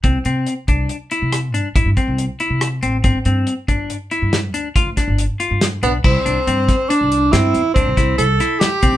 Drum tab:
CC |--------------|--------------|x-------------|
HH |xxxxxxxxxxxxxx|xxxxxxxxxxxxxx|-xxxxxxxxxxxxx|
SD |------r-----r-|------o--o--o-|---o--o--o-oo-|
BD |o--o----oo----|o--o----oo----|o--o----oo---o|